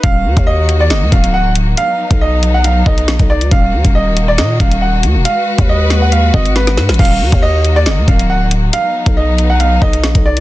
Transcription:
<<
  \new Staff \with { instrumentName = "Upright piano" } { \time 4/4 \key ees \minor \tempo 4 = 138 f''4 ees''8. d''16 ees''8 f''8 ges''8 r8 | f''4 dis''8. fis''16 f''8 dis''4 d''8 | f''4 ees''8. d''16 ees''8 f''8 ges''8 r8 | f''4 ees''8. ges''16 f''8 ees''8 ces''4 |
f''4 ees''8. d''16 ees''8 f''8 ges''8 r8 | f''4 dis''8. fis''16 f''8 dis''4 d''8 | }
  \new Staff \with { instrumentName = "String section" } { \time 4/4 \key ees \minor <ees bes ges'>1 | <fis b dis'>1 | <ees bes ges'>1 | <aes ces''>1 |
<ees bes>1 | <fis b dis'>1 | }
  \new Staff \with { instrumentName = "808-style bass" } { \clef bass \time 4/4 \key ees \minor ees,,8 ees,16 ees,4~ ees,16 ges,,16 ees,16 d,,4. | r8. b,,4.~ b,,16 b,,8 bes,,16 b,,8 d,16 | ees,,8 ees,16 ees,,4~ ees,,16 bes,8 ees,,4 ees,16 ees,,16 | r8. ees,4.~ ees,16 aes,,4 aes,16 aes,,16 |
ees,,8 ees,16 ees,4~ ees,16 ges,,16 ees,16 d,,4. | r8. b,,4.~ b,,16 b,,8 bes,,16 b,,8 d,16 | }
  \new DrumStaff \with { instrumentName = "Drums" } \drummode { \time 4/4 <hh bd>8. <hh bd>16 r8 hh8 <hh sn>8 <hh bd>16 hh16 r8 hh8 | hh8. <hh bd>16 r8 hh8 hh8 bd16 hh16 sn16 <hh bd>8 hh16 | <hh bd>8. <hh bd>16 r8 hh8 <hh sn>8 <hh bd>16 hh16 r8 hh8 | hh8. <hh bd>16 r8 <hh sn>8 hh8 bd16 hh16 sn16 <hh sn>16 sn16 <hh sn>32 hh32 |
<cymc bd>32 hh8 r32 <hh bd>16 r8 hh8 <hh sn>8 <hh bd>16 hh16 r8 hh8 | hh8. <hh bd>16 r8 hh8 hh8 bd16 hh16 sn16 <hh bd>8 hh16 | }
>>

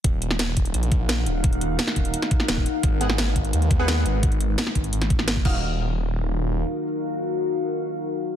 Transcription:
<<
  \new Staff \with { instrumentName = "Ambient pad" } { \time 4/4 \key ees \minor \tempo 4 = 172 << { <ees' f'' ges''>1~ | <ees' f'' ges''>1 | <aes ces''>1 | r2. r8 <ees' ges' bes' f''>8~ |
<ees' ges' bes' f''>1~ | <ees' ges' bes' f''>1 | } \\ { bes'1~ | bes'1~ | bes'1 | r1 |
r1 | r1 | } >> }
  \new Staff \with { instrumentName = "Synth stab" } { \time 4/4 \key ees \minor r1 | r1 | r8 <ces' aes' ges''>16 r2 <ces' aes' ges''>4~ <ces' aes' ges''>16~ | <ces' aes' ges''>8 r2. <ees' ges' f''>8~ |
<ees' ges' f''>1~ | <ees' ges' f''>1 | }
  \new Staff \with { instrumentName = "Detuned saw bass" } { \clef bass \time 4/4 \key ees \minor ees,,4. ees,,8 bes,,4. ees,,8~ | ees,,4 r8 ees,,8 r4 ees,,8 r8 | aes,,4. aes,,8 ees,4. aes,,8~ | aes,,4 r8 aes,,8 aes,,4 aes,,8 ees,,8~ |
ees,,2. r4 | r1 | }
  \new DrumStaff \with { instrumentName = "Drums" } \drummode { \time 4/4 <hh bd>8 hh16 sn16 <hh sn>8 <hh bd>16 hh16 hh16 hh16 <hh bd>8 <hh sn>8 hh8 | <hh bd>16 hh16 hh8 <hh sn>16 sn16 <hh bd>16 hh16 hh16 <hh sn>16 <hh bd>16 sn16 <hh sn>16 bd16 hh8 | <hh bd>8 hh16 sn16 <hh sn>8 <hh bd>16 hh16 hh16 hh16 <hh bd>8 <hh sn>8 hh8 | <hh bd>16 hh16 hh8 <hh sn>16 sn16 <hh bd>16 hh16 hh16 <hh sn>16 <hh bd>16 sn16 <hh sn>16 bd16 <cymc bd>8 |
r4 r4 r4 r4 | r4 r4 r4 r4 | }
>>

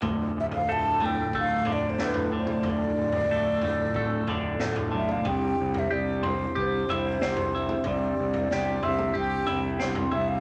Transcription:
<<
  \new Staff \with { instrumentName = "Flute" } { \time 4/4 \key d \minor \tempo 4 = 92 r8 e''16 f''16 a''8 g''8 f''8 d''16 c''16 b'8 c''8 | d''2. r8 e''16 f''16 | g''8. e''16 d''8 c''8 c''2 | d''4. e''8 g''4 r8 e''16 f''16 | }
  \new Staff \with { instrumentName = "Tonewheel organ" } { \time 4/4 \key d \minor << { <a f' a'>1~ | <a f' a'>1 | <c' e' g'>1~ | <c' e' g'>1 | } \\ { d'1~ | d'1~ | d'1~ | d'1 | } >> }
  \new Staff \with { instrumentName = "Clean electric guitar" } { \time 4/4 \key d \minor d,4 a8 a,8 a8 d8 a,8 d8 | d,4 a8 a,8 a8 d8 a,8 d8 | c4 g'8 c'8 g'8 e'8 c'8 e'8 | c4 g'8 c'8 g'8 e'8 c'8 e'8 | }
  \new Staff \with { instrumentName = "Fingered electric bass" } { \clef bass \time 4/4 \key d \minor d,,8 d,,8 d,,4 d,,8 d,,8 d,,4 | d,,8 d,,8 d,,8 d,,8 d,,8 d,,8 d,,8 b,,8 | c,8 c,8 c,4 c,8 c,8 c,4 | c,8 c,8 c,8 c,8 c,8 c,8 c,8 c,8 | }
  \new DrumStaff \with { instrumentName = "Drums" } \drummode { \time 4/4 <bd tomfh>8. tomfh16 r8 tomfh8 bd8 tomfh8 sn16 tomfh8 toml16 | <bd tomfh>8. tomfh16 r8 tomfh8 bd8 tomfh8 sn16 tomfh8 toml16 | <bd tomfh>8. tomfh16 r8 tomfh8 bd8 tomfh8 sn16 tomfh8 toml16 | <bd tomfh>8. tomfh16 sn8 tomfh16 toml16 bd8 tomfh8 sn16 tomfh16 toml8 | }
>>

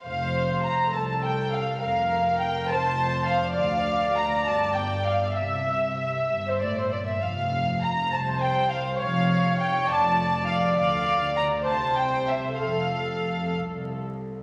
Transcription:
<<
  \new Staff \with { instrumentName = "Violin section" } { \time 6/8 \key f \major \tempo 4. = 67 f''4 bes''8 a''8 g''8 f''8 | f''4 g''8 a''4 f''8 | f''4 bes''8 a''8 g''8 f''8 | e''4.~ e''16 c''16 d''16 c''16 d''16 e''16 |
f''4 bes''8 a''8 g''8 f''8 | f''4 g''8 a''4 f''8 | f''4 bes''8 a''8 g''8 e''8 | f''4. r4. | }
  \new Staff \with { instrumentName = "Violin section" } { \time 6/8 \key f \major f''4 bes''8 a''8 g''8 f''8 | f''4 g''8 a''4 f''8 | f''4 bes''8 a''8 g''8 f''8 | e''4.~ e''16 c''16 d''16 c''16 d''16 e''16 |
f''4 bes''8 a''8 g''8 f''8 | f''4 g''8 a''4 f''8 | f''4 bes''8 a''8 g''8 e''8 | f''4. r4. | }
  \new Staff \with { instrumentName = "Viola section" } { \time 6/8 \key f \major c''4. a'4. | bes'4. c''4. | d''2. | e''2~ e''16 r8. |
r4. c''4. | des''4. d''4.~ | d''4. c''4. | a'2~ a'16 r8. | }
  \new Staff \with { instrumentName = "Cello section" } { \clef bass \time 6/8 \key f \major f,4. c,4. | f,4. f,4. | d,4. g,4. | c4. g,8 a,8 bes,8 |
f,4. c,4. | f,4. f,4. | d4. c4. | f,4. c,4. | }
  \new Staff \with { instrumentName = "Double bass section" } { \clef bass \time 6/8 \key f \major f,,4. c,4. | f,,4. f,,4. | d,4. g,,4. | c,4. g,,4. |
f,,4. c,4. | f,,4. f,,4. | d,4. c,4. | f,,4. c,4. | }
>>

